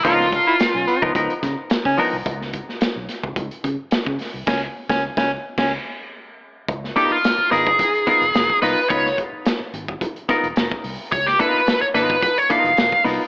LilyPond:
<<
  \new Staff \with { instrumentName = "Lead electric guitar" } { \time 4/4 \key des \mixolydian \tempo 4 = 108 f'2 r2 | r1 | r1 | r8 g'16 f'8. aes'2 ces''8 |
des''8 r2. r8 | des''16 g'16 ces''8. des''16 ces''8 ces''16 des''16 f''4 r8 | }
  \new Staff \with { instrumentName = "Clean electric guitar" } { \time 4/4 \key des \mixolydian <f ces' ees' bes'>16 r4. <f ces' ees' bes'>16 <f ces' ees' bes'>16 r4 r16 <f ces' ees' bes'>16 r16 | r1 | r1 | r8 <ces' ees' f' bes'>16 r8. <ces' ees' f' bes'>16 r8. <ces' ees' f' bes'>16 r8. <ces' ees' f' bes'>16 r16 |
<ces' ees' f' ces''>16 r2 r16 <ces' ees' f' bes'>16 r4 r16 | r8 <ces' ees' f' bes'>16 r8. <ces' ees' f' bes'>16 r8. <ces' ees' f' bes'>16 r8. <ces' ees' f' bes'>16 r16 | }
  \new Staff \with { instrumentName = "Baritone saxophone" } { \time 4/4 \key des \mixolydian f'8 r16 fes'16 r16 des'16 ces'16 r4. des'8 r16 | r1 | des'8 r16 des'8 des'8 r16 des'8 r4. | r1 |
r1 | r1 | }
  \new Staff \with { instrumentName = "Fingered electric bass" } { \clef bass \time 4/4 \key des \mixolydian des,8. r8 ces,16 r16 des,16 des,16 r16 des16 r8 des16 r16 c,16 | des,8. r8 ces,16 r16 des,16 des,16 r16 des16 r8 des16 r16 c,16 | des,8 r16 des,8 des,8 r16 des,8 r4. | des,8 r4 aes,,8 r8. fes,,16 f,,16 r16 c,16 r16 |
des,8 r4 aes,,8 r8. fes,,16 f,,16 r16 c,16 r16 | des,8 r4 aes,,8 r8. fes,,16 f,,16 r16 c,16 r16 | }
  \new DrumStaff \with { instrumentName = "Drums" } \drummode { \time 4/4 <hh bd>16 sn16 <hh bd>8 <hh sn>8 hh16 bd16 <hh bd>16 hh16 <hh bd sn>8 <hh sn>16 bd16 hho8 | <hh bd>16 sn16 <hh bd>16 sn16 <hh sn>8 <hh sn>16 bd16 <hh bd>16 hh16 <hh bd>8 <hh sn>16 bd16 <hho sn>8 | <cymc bd sn>8. <bd sn>16 r16 <bd sn>8. <cymc bd sn>4 r4 | <hh bd>16 sn16 <hh bd>8 <hh sn>8 <hh sn>16 bd16 <hh bd>16 hh16 <hh bd>16 hh16 <hh sn>16 bd16 <hho sn>8 |
<hh bd>16 sn16 <hh bd>8 <hh sn>8 hh16 bd16 <hh bd>16 hh16 <hh bd sn>16 hh16 <hh sn>16 bd16 hho8 | <hh bd>16 sn16 <hh bd>8 <hh sn>8 <hh sn>16 bd16 <hh bd>16 hh16 <hh bd>16 hh16 <hh sn>16 bd16 <hho sn>8 | }
>>